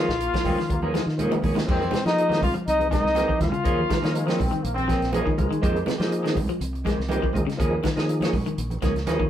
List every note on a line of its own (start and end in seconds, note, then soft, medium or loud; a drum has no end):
0.00 0.10 D#3 medium
0.00 0.19 G#3 medium
0.00 1.39 F4 loud
0.00 1.40 F5 medium
0.08 0.28 A#1 medium
0.08 muted clean electric guitar stroke medium
0.08 kick medium
0.08 snare medium
0.19 0.44 A#3 loud
0.19 closed hi-hat medium
0.33 0.49 F3 medium
0.33 muted clean electric guitar stroke soft
0.33 kick medium
0.33 snare medium
0.33 closed hi-hat soft
0.44 0.55 D#2 medium
0.44 0.57 F3 medium
0.44 0.57 A#3 medium
0.44 0.55 C4 medium
0.44 0.57 C#4 medium
0.44 0.57 G#4 medium
0.44 kick medium
0.44 open hi-hat medium
0.44 high conga medium
0.44 low conga medium
0.58 0.73 D#3 medium
0.58 muted clean electric guitar stroke medium
0.58 snare soft
0.69 0.99 D#2 loud
0.69 0.81 A#3 loud
0.69 muted clean electric guitar stroke soft
0.69 kick medium
0.69 closed hi-hat medium
0.69 high conga medium
0.82 0.93 F3 medium
0.82 0.87 A#3 medium
0.82 0.93 A#3 medium
0.82 0.93 C#4 medium
0.82 0.94 G#4 medium
0.82 high conga medium
0.93 1.04 F3 medium
0.93 1.09 F3 medium
0.93 1.05 G#3 medium
0.93 1.04 A#3 medium
0.93 1.04 D#4 medium
0.93 1.05 G#4 loud
0.93 muted clean electric guitar stroke soft
0.93 snare medium
0.93 closed hi-hat medium
0.93 high conga medium
1.06 1.26 D#3 medium
1.06 snare soft
1.18 1.38 F3 medium
1.18 1.32 F3 medium
1.18 1.31 A#3 medium
1.18 1.39 A#3 medium
1.18 1.65 A#3 medium
1.18 1.31 C#4 medium
1.18 1.39 D#4 medium
1.18 1.39 G#4 medium
1.18 1.30 G#4 medium
1.18 closed hi-hat medium
1.18 low conga medium
1.31 1.47 D#3 medium
1.31 muted clean electric guitar stroke medium
1.31 muted fingered electric bass stroke soft
1.31 closed hi-hat soft
1.31 low conga medium
1.42 1.54 D#2 loud
1.42 1.56 F3 medium
1.42 1.56 A#3 medium
1.42 1.56 C#4 medium
1.42 1.55 G#4 medium
1.42 kick medium
1.42 open hi-hat medium
1.42 low conga medium
1.55 1.63 D#3 medium
1.55 muted clean electric guitar stroke soft
1.55 snare medium
1.55 closed hi-hat soft
1.55 low conga medium
1.66 1.88 F2 loud
1.66 1.84 D#3 medium
1.66 1.82 F3 medium
1.66 1.84 G#3 medium
1.66 1.82 A#3 medium
1.66 2.03 C4 loud
1.66 1.84 C4 medium
1.66 1.82 D#4 medium
1.66 1.84 G4 medium
1.66 1.83 G#4 medium
1.66 kick loud
1.66 crash medium
1.71 2.04 C5 medium
1.80 closed hi-hat soft
1.80 high conga medium
1.91 2.08 C3 medium
1.91 muted clean electric guitar stroke soft
1.91 snare medium
1.91 closed hi-hat soft
1.91 high conga medium
1.91 low conga medium
2.04 2.43 F3 medium
2.04 2.34 F3 medium
2.04 2.17 G#3 soft
2.04 2.43 A#3 medium
2.04 2.17 C4 medium
2.04 2.44 D#4 medium
2.04 2.40 D#4 loud
2.04 2.18 G4 medium
2.04 2.44 G#4 medium
2.04 2.40 D#5 medium
2.04 snare medium
2.04 closed hi-hat soft
2.18 muted clean electric guitar stroke soft
2.18 closed hi-hat medium
2.29 2.45 D#3 medium
2.29 2.40 D#3 medium
2.29 2.40 G#3 medium
2.29 2.40 C4 medium
2.29 2.41 G4 medium
2.29 snare medium
2.29 closed hi-hat soft
2.29 high conga medium
2.41 2.52 C2 medium
2.41 2.54 F4 loud
2.41 2.54 F5 medium
2.41 muted clean electric guitar stroke soft
2.41 kick medium
2.41 open hi-hat medium
2.41 high conga medium
2.41 low conga medium
2.54 2.69 F3 medium
2.54 muted clean electric guitar stroke soft
2.54 closed hi-hat soft
2.67 2.96 C2 medium
2.67 2.90 D#4 loud
2.67 2.91 D#5 medium
2.67 closed hi-hat medium
2.78 muted clean electric guitar stroke soft
2.78 closed hi-hat soft
2.78 high conga medium
2.90 3.04 D#3 medium
2.90 3.03 G#3 medium
2.90 3.06 G#3 medium
2.90 3.03 C4 medium
2.90 3.37 D#4 loud
2.90 3.02 G4 medium
2.90 3.37 D#5 medium
2.90 kick medium
2.90 snare soft
2.90 closed hi-hat medium
2.90 high conga medium
2.90 low conga medium
3.03 3.23 C2 medium
3.03 muted clean electric guitar stroke soft
3.03 snare soft
3.15 3.31 D#3 medium
3.15 3.25 F3 medium
3.15 3.31 G#3 medium
3.15 3.26 A#3 medium
3.15 3.31 C4 medium
3.15 3.26 D#4 medium
3.15 3.31 G4 medium
3.15 3.26 G#4 medium
3.15 snare soft
3.15 closed hi-hat medium
3.15 high conga loud
3.28 3.43 F3 medium
3.28 muted fingered electric bass stroke soft
3.28 kick medium
3.39 3.51 D#2 medium
3.39 3.50 F3 medium
3.39 3.50 A#3 medium
3.39 3.50 D#4 medium
3.39 3.50 F4 medium
3.39 4.36 F4 loud
3.39 4.35 F5 medium
3.39 muted clean electric guitar stroke soft
3.39 kick medium
3.39 snare soft
3.39 closed hi-hat medium
3.39 low conga medium
3.52 3.68 C#3 medium
3.52 muted clean electric guitar stroke soft
3.52 closed hi-hat soft
3.63 3.84 D#2 loud
3.63 3.79 F3 medium
3.63 3.79 A#3 medium
3.63 3.80 A#3 medium
3.63 3.80 C#4 medium
3.63 3.79 D#4 medium
3.63 3.80 G#4 loud
3.63 3.80 G#4 medium
3.63 kick loud
3.63 closed hi-hat medium
3.78 high conga medium
3.89 4.05 D#3 medium
3.89 4.13 A#3 loud
3.89 muted clean electric guitar stroke soft
3.89 kick medium
3.89 snare medium
3.89 closed hi-hat medium
3.89 high conga medium
3.89 low conga medium
4.02 4.30 D#3 medium
4.02 4.40 F3 loud
4.02 4.40 A#3 medium
4.02 4.13 A#3 soft
4.02 4.13 C#4 medium
4.02 4.40 D#4 medium
4.02 4.13 G#4 medium
4.02 4.41 A#4 loud
4.02 snare medium
4.02 closed hi-hat soft
4.14 4.28 G#3 loud
4.14 muted clean electric guitar stroke soft
4.14 closed hi-hat medium
4.26 4.42 F3 medium
4.26 4.38 F3 medium
4.26 4.38 A#3 medium
4.26 4.63 C4 loud
4.26 4.39 C#4 medium
4.26 4.39 G#4 medium
4.26 snare medium
4.26 closed hi-hat soft
4.39 4.50 A#1 medium
4.39 muted clean electric guitar stroke soft
4.39 kick medium
4.39 open hi-hat medium
4.39 high conga medium
4.39 low conga medium
4.51 4.66 D#3 medium
4.51 muted clean electric guitar stroke medium
4.51 closed hi-hat soft
4.63 4.93 A#1 loud
4.63 4.76 A#3 loud
4.63 closed hi-hat medium
4.75 5.09 C4 loud
4.75 muted clean electric guitar stroke medium
4.75 closed hi-hat soft
4.75 high conga medium
4.88 5.03 F3 medium
4.88 5.01 A#3 medium
4.88 5.01 C#4 medium
4.88 5.01 G#4 medium
4.88 kick medium
4.88 snare soft
4.88 closed hi-hat medium
4.88 high conga medium
5.02 5.21 A#1 medium
5.02 muted clean electric guitar stroke medium
5.02 snare soft
5.02 closed hi-hat soft
5.12 5.22 F3 medium
5.12 5.28 F3 loud
5.12 5.25 A#3 loud
5.12 5.23 A#3 medium
5.12 5.29 A#3 medium
5.12 5.29 C#4 loud
5.12 5.23 D#4 medium
5.12 5.23 G#4 loud
5.12 5.29 G#4 loud
5.12 closed hi-hat medium
5.12 high conga loud
5.24 5.41 D#3 medium
5.24 6.23 G#3 medium
5.24 muted fingered electric bass stroke soft
5.24 kick medium
5.37 5.48 C#2 medium
5.37 5.47 F3 medium
5.37 5.48 A#3 medium
5.37 5.48 D#4 medium
5.37 5.48 A#4 medium
5.37 muted clean electric guitar stroke soft
5.37 kick medium
5.37 closed hi-hat medium
5.37 low conga medium
5.51 5.58 D#3 medium
5.51 muted clean electric guitar stroke medium
5.51 closed hi-hat soft
5.62 5.82 F2 loud
5.62 5.77 D#3 medium
5.62 5.77 F3 loud
5.62 5.77 G#3 loud
5.62 5.77 A#3 medium
5.62 5.78 C4 loud
5.62 5.77 D#4 medium
5.62 5.78 G4 loud
5.62 5.78 G#4 loud
5.62 kick loud
5.62 closed hi-hat medium
5.76 closed hi-hat soft
5.86 6.02 C3 medium
5.86 muted clean electric guitar stroke soft
5.86 snare medium
5.86 closed hi-hat soft
5.86 high conga loud
5.98 6.28 F3 loud
5.98 6.38 F3 loud
5.98 6.10 G#3 medium
5.98 6.38 A#3 loud
5.98 6.10 C4 medium
5.98 6.38 D#4 loud
5.98 6.10 G4 medium
5.98 6.38 G#4 loud
5.98 snare medium
5.98 closed hi-hat soft
6.11 muted clean electric guitar stroke soft
6.11 closed hi-hat medium
6.22 6.34 D#3 medium
6.22 6.39 D#3 medium
6.22 6.34 G#3 medium
6.22 6.34 C4 medium
6.22 muted clean electric guitar stroke medium
6.22 snare medium
6.22 closed hi-hat soft
6.35 6.47 C2 medium
6.35 muted clean electric guitar stroke soft
6.35 kick medium
6.35 open hi-hat medium
6.35 high conga medium
6.35 low conga medium
6.47 6.64 F3 medium
6.47 muted clean electric guitar stroke medium
6.47 closed hi-hat soft
6.61 6.89 C2 loud
6.61 closed hi-hat medium
6.73 muted clean electric guitar stroke medium
6.73 closed hi-hat soft
6.84 6.98 D#3 medium
6.84 6.97 G#3 medium
6.84 7.01 G#3 medium
6.84 6.96 C4 medium
6.84 6.96 G4 medium
6.84 kick medium
6.84 snare soft
6.84 closed hi-hat medium
6.84 high conga medium
6.97 7.17 C2 medium
6.97 muted clean electric guitar stroke medium
6.97 snare soft
7.09 7.25 D#3 medium
7.09 7.20 F3 medium
7.09 7.25 G#3 medium
7.09 7.20 A#3 medium
7.09 7.25 C4 medium
7.09 7.20 D#4 medium
7.09 7.25 G4 loud
7.09 7.20 G4 loud
7.09 closed hi-hat medium
7.09 high conga loud
7.22 7.37 F3 medium
7.22 kick medium
7.33 7.45 D#2 medium
7.33 7.44 F3 medium
7.33 7.44 A#3 medium
7.33 7.44 D#4 medium
7.33 7.44 G#4 loud
7.33 muted clean electric guitar stroke soft
7.33 kick medium
7.33 closed hi-hat medium
7.33 low conga medium
7.47 7.62 C#3 medium
7.47 muted clean electric guitar stroke soft
7.47 snare soft
7.47 closed hi-hat soft
7.57 7.79 D#2 loud
7.57 7.73 F3 loud
7.57 7.74 F3 loud
7.57 7.73 A#3 loud
7.57 7.74 A#3 medium
7.57 7.74 C#4 medium
7.57 7.73 D#4 medium
7.57 7.74 G#4 loud
7.57 7.75 G#4 loud
7.57 kick medium
7.57 closed hi-hat medium
7.71 high conga medium
7.83 7.99 D#3 medium
7.83 muted clean electric guitar stroke soft
7.83 kick medium
7.83 snare medium
7.83 closed hi-hat medium
7.83 high conga medium
7.95 8.25 D#3 medium
7.95 8.34 F3 loud
7.95 8.34 A#3 medium
7.95 8.07 A#3 medium
7.95 8.08 C#4 medium
7.95 8.34 D#4 medium
7.95 8.08 G#4 medium
7.95 8.35 G#4 loud
7.95 snare medium
7.95 closed hi-hat soft
8.08 muted clean electric guitar stroke soft
8.08 closed hi-hat medium
8.21 8.32 F3 medium
8.21 8.37 F3 medium
8.21 8.32 A#3 medium
8.21 8.33 C#4 medium
8.21 8.32 G#4 medium
8.21 snare medium
8.21 closed hi-hat soft
8.21 high conga medium
8.33 8.43 A#1 medium
8.33 muted clean electric guitar stroke soft
8.33 kick medium
8.33 open hi-hat medium
8.33 high conga medium
8.33 low conga medium
8.46 8.61 D#3 medium
8.46 muted clean electric guitar stroke soft
8.46 closed hi-hat soft
8.58 8.77 A#1 loud
8.58 closed hi-hat medium
8.70 muted clean electric guitar stroke medium
8.70 closed hi-hat soft
8.70 high conga medium
8.81 9.04 C#2 medium
8.81 8.95 F3 medium
8.81 8.97 F3 medium
8.81 8.94 A#3 medium
8.81 8.94 C#4 medium
8.81 8.94 G#4 medium
8.81 kick medium
8.81 snare soft
8.81 closed hi-hat medium
8.81 high conga medium
8.81 low conga medium
8.95 muted clean electric guitar stroke soft
8.95 snare soft
8.95 closed hi-hat soft
9.06 9.29 D#2 medium
9.06 9.22 F3 medium
9.06 9.17 F3 medium
9.06 9.22 A#3 loud
9.06 9.17 A#3 medium
9.06 9.22 C#4 medium
9.06 9.17 D#4 medium
9.06 9.22 G#4 loud
9.06 9.18 G#4 loud
9.06 snare soft
9.06 closed hi-hat medium
9.06 high conga loud
9.19 9.30 D#3 medium
9.19 kick medium